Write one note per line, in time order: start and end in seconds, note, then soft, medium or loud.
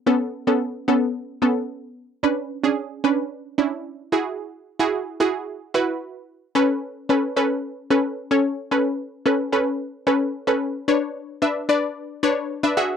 0.07 0.32 B3 medium
0.07 0.32 C#4 medium
0.07 0.32 A4 medium
0.47 0.72 B3 medium
0.47 0.72 C#4 medium
0.47 0.72 A4 medium
0.88 1.21 B3 medium
0.88 1.21 C#4 medium
0.88 1.21 A4 loud
1.42 1.92 B3 medium
1.42 1.92 C#4 medium
1.42 1.92 A4 medium
2.23 2.48 C#4 medium
2.23 2.48 D4 medium
2.23 2.48 B4 loud
2.63 2.88 C#4 medium
2.63 2.89 D4 medium
2.63 2.89 G#4 loud
3.04 3.37 C#4 medium
3.04 3.37 D4 medium
3.04 3.38 B4 loud
3.58 4.08 C#4 medium
3.58 4.08 D4 medium
3.58 4.08 E4 medium
4.12 4.66 E4 medium
4.12 4.66 F#4 medium
4.12 4.67 G#4 loud
4.79 5.05 E4 medium
4.79 5.05 F#4 medium
4.79 5.05 G#4 loud
5.20 5.53 E4 medium
5.20 5.54 F#4 medium
5.20 5.54 G#4 loud
5.74 6.24 E4 medium
5.74 6.24 F#4 medium
5.74 6.24 B4 medium
6.55 6.89 C#4 medium
6.55 6.89 A4 medium
6.55 6.89 B4 loud
7.09 7.26 C#4 medium
7.09 7.26 A4 medium
7.09 7.26 B4 medium
7.36 7.70 C#4 medium
7.36 7.70 A4 medium
7.36 7.70 B4 loud
7.90 8.15 C#4 medium
7.90 8.16 A4 medium
7.90 8.16 B4 loud
8.31 8.56 C#4 medium
8.31 8.56 A4 medium
8.31 8.56 C#5 medium
8.71 9.05 C#4 medium
8.71 9.05 A4 medium
8.71 9.05 B4 medium
9.26 9.42 C#4 medium
9.26 9.42 A4 medium
9.26 9.43 B4 medium
9.52 9.86 C#4 medium
9.52 9.86 A4 medium
9.52 9.86 B4 loud
10.07 10.32 C#4 medium
10.07 10.32 A4 medium
10.07 10.32 B4 medium
10.47 10.72 C#4 medium
10.47 10.72 A4 medium
10.47 10.72 B4 medium
10.88 11.21 D4 medium
10.88 11.21 B4 medium
10.88 11.21 C#5 loud
11.42 11.59 D4 medium
11.42 11.59 B4 medium
11.42 11.59 E5 medium
11.69 12.02 D4 medium
11.69 12.02 B4 medium
11.69 12.02 D5 loud
12.23 12.48 D4 medium
12.23 12.48 B4 medium
12.23 12.48 C#5 loud
12.63 12.77 D4 medium
12.63 12.77 B4 medium
12.63 12.76 E5 loud
12.77 12.97 F#4 medium
12.77 12.97 G#4 medium
12.77 12.97 E5 loud